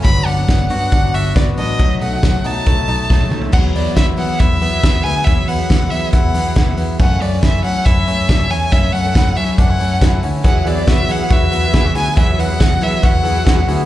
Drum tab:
CC |----------------|----------------|x---------------|----------------|
HH |x-o-x-o-x-o-x-o-|x-o-x-o-x-o-----|--o-x-o-x-o-x-o-|x-o-x-o-x-o-x-o-|
SD |----o-------o---|----o-------o---|----o-------o---|----o-------o---|
T1 |----------------|-------------o--|----------------|----------------|
T2 |----------------|--------------o-|----------------|----------------|
FT |----------------|---------------o|----------------|----------------|
BD |o---o---o---o---|o---o---o---o---|o---o---o---o---|o---o---o---o---|

CC |----------------|----------------|----------------|----------------|
HH |x-o-x-o-x-o-x-o-|x-o-x-o-x-o-x-o-|x-o-x-o-x-o-x-o-|x-o-x-o-x-o-x-o-|
SD |----o-------o---|----o-------o---|----o-------o---|----o-------o---|
T1 |----------------|----------------|----------------|----------------|
T2 |----------------|----------------|----------------|----------------|
FT |----------------|----------------|----------------|----------------|
BD |o---o---o---o---|o---o---o---o---|o---o---o---o---|o---o---o---o---|